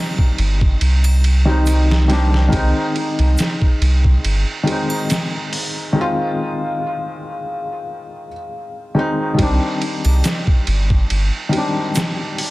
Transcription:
Already playing: D#3 G3 C4 D#4
0.18 kick
0.38 G1, ride
0.61 kick
0.81 C2, ride
1.04 ride, triangle
1.24 ride
1.45 D#3 G3 C4
1.49 D#4
1.66 ride, shaker
1.91 snare
2.08 D#3 G3 C4 D4, snare, ride
2.34 snare
2.48 D#3 G#3
2.52 C2 C4, kick, ride
2.56 D#4
2.96 ride
3.19 C2, ride
3.38 snare, ride, shaker
3.62 kick
3.81 C2, ride
4.04 kick
4.24 G1, ride
4.63 D#3 G#3
4.67 C4, ride
4.72 D#4
4.90 triangle
5.10 snare, ride, shaker
5.53 open hi-hat
5.93 D#3 G#3
5.98 C4 F4
8.95 D#3 G#3 C4
8.99 D#4
9.34 D#3 G3
9.39 C2 C4 D4, kick, ride
9.82 ride
10.05 C2, ride, triangle
10.24 snare, ride, shaker
10.47 kick
10.67 G1, ride
10.90 kick
11.10 G1, ride
11.49 D#3 G3, ride
11.55 C4 D4
11.95 snare, ride, shaker
12.38 open hi-hat

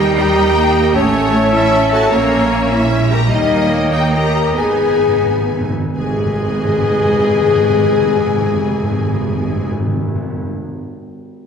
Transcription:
Already playing: D#2 D#3 G3 D#4 G4 A#4 D#5 G5 A#5
0.15 D#4 G4 G5
0.55 A#3
0.94 A1 A3 C#4 C#5 E5 A5
1.34 A3
1.52 C#4 E4 E5
1.73 C#4
1.91 F#4 A4 A5
2.11 A#1 A#3 C#4 C#5 A#5
2.52 A#3
2.70 C#4 E4 E5
2.92 G#3
3.10 G4 A#4 A#5
3.28 D#3 G3 A#3 D#4 C#5 D#5 G5
3.32 D#2
3.71 A#3
3.92 D#4 G4 G5
4.12 G4 A#4 A#5
4.55 G#1 G#2 B3 D#4 G#4 B4 G#5
4.66 G#2
4.74 G#2
4.83 G#2
4.90 G#2
4.99 G#2
5.09 G#2
5.17 G#2
5.26 G#2
5.34 G#2
5.42 G#2
5.51 G#2
5.61 G#2
5.70 G#2
5.80 G#2
5.96 G#1 G#2 G#4 B4 D#5 G#5
6.05 G#2
6.12 G#2
6.19 G#2
6.26 G#2
6.33 G#2
6.40 G#2
6.47 G#2
6.54 G#2
6.61 G#2
6.68 G#2
6.75 G#2
6.83 G#2
6.90 G#2
6.97 G#2
7.05 G#2
7.12 G#2
7.20 G#2
7.27 G#2
7.34 G#2
7.41 G#2
7.48 G#2
7.55 G#2
7.62 G#2
7.70 G#2
7.78 G#2
7.85 G#2
7.92 G#2
7.99 G#2
8.06 G#2
8.13 G#2
8.20 G#2
8.27 G#2
8.34 G#2
8.42 G#2
8.49 G#2
8.56 G#2
8.63 G#2
8.70 G#2
8.76 G#2
8.83 G#2
8.91 G#2
8.99 G#2
9.06 G#2
9.13 G#2
9.21 G#2
9.27 G#2
9.35 G#2
9.42 G#2
9.50 G#2
9.57 G#2
9.64 G#2
9.72 G#2
9.80 G#2
9.87 G#2
9.94 G#2
10.01 G#2
10.08 G#2
10.15 G#2
10.23 G#2
10.30 G#2
10.37 G#2

